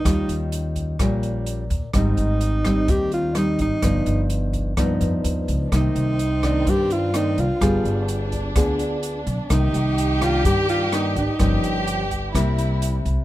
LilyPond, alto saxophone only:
\new Staff \with { instrumentName = "Alto saxophone" } { \time 4/4 \key c \minor \tempo 4 = 127 ees'4 r2. | ees'2 g'8 f'8 ees'8 ees'8~ | ees'4 r2. | ees'2 g'8 f'8 ees'8 f'8~ |
f'4 r2. | ees'4. f'8 g'8 f'8 ees'8 ees'8~ | ees'4 r2. | }